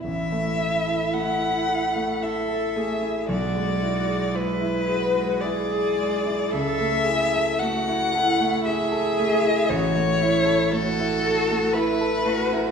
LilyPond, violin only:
\new Staff \with { instrumentName = "Violin" } { \time 3/4 \key a \major \tempo 4 = 56 e''4 fis''4 e''4 | d''4 b'4 d''4 | e''4 fis''4 e''4 | cis''4 a'4 b'4 | }